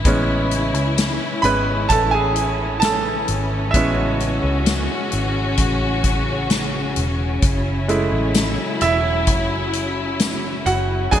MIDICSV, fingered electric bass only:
0, 0, Header, 1, 2, 480
1, 0, Start_track
1, 0, Key_signature, 3, "major"
1, 0, Tempo, 923077
1, 26, Time_signature, 4, 2, 24, 8
1, 5824, End_track
2, 0, Start_track
2, 0, Title_t, "Fingered electric bass"
2, 0, Program_c, 0, 33
2, 25, Note_on_c, 0, 33, 96
2, 384, Note_off_c, 0, 33, 0
2, 384, Note_on_c, 0, 37, 80
2, 608, Note_off_c, 0, 37, 0
2, 744, Note_on_c, 0, 32, 72
2, 968, Note_off_c, 0, 32, 0
2, 986, Note_on_c, 0, 33, 85
2, 1685, Note_off_c, 0, 33, 0
2, 1708, Note_on_c, 0, 32, 89
2, 1931, Note_off_c, 0, 32, 0
2, 1944, Note_on_c, 0, 33, 102
2, 2285, Note_off_c, 0, 33, 0
2, 2306, Note_on_c, 0, 37, 84
2, 2529, Note_off_c, 0, 37, 0
2, 2668, Note_on_c, 0, 32, 77
2, 2890, Note_off_c, 0, 32, 0
2, 2902, Note_on_c, 0, 33, 94
2, 3603, Note_off_c, 0, 33, 0
2, 3624, Note_on_c, 0, 28, 80
2, 3848, Note_off_c, 0, 28, 0
2, 3861, Note_on_c, 0, 30, 112
2, 4203, Note_off_c, 0, 30, 0
2, 4224, Note_on_c, 0, 33, 89
2, 4448, Note_off_c, 0, 33, 0
2, 4583, Note_on_c, 0, 28, 75
2, 4822, Note_off_c, 0, 28, 0
2, 4822, Note_on_c, 0, 30, 97
2, 5523, Note_off_c, 0, 30, 0
2, 5544, Note_on_c, 0, 30, 91
2, 5768, Note_off_c, 0, 30, 0
2, 5783, Note_on_c, 0, 28, 109
2, 5824, Note_off_c, 0, 28, 0
2, 5824, End_track
0, 0, End_of_file